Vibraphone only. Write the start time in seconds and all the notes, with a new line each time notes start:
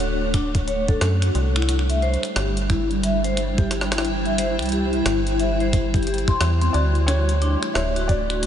0.00 F#4
0.34 D4
0.68 C#5
0.88 A4
1.22 F#4
1.56 E4
1.90 E5
2.02 C5
2.36 G4
2.70 E4
3.04 E5
3.24 C5
3.58 G4
3.92 E4
4.26 E5
4.38 C5
4.72 G4
5.06 E4
5.39 E5
5.60 C5
5.94 G4
6.07 G4
6.28 C6
6.61 C4
6.74 F#4
7.08 F#4
7.42 D4
7.75 C#5
7.96 F#4
8.30 F#4